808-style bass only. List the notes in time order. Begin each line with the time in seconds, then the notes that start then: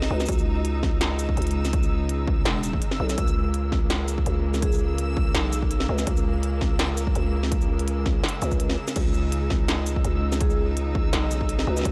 0.11 C#2
0.29 C#2
1.37 C#2
2.46 E1
3.00 B1
3.18 C#2
4.26 C#2
5.35 B1
5.89 C#2
6.07 C#2
7.16 C#2
8.42 C#2
8.96 C#2
10.05 C#2
11.13 B1
11.67 C#2
11.85 C#2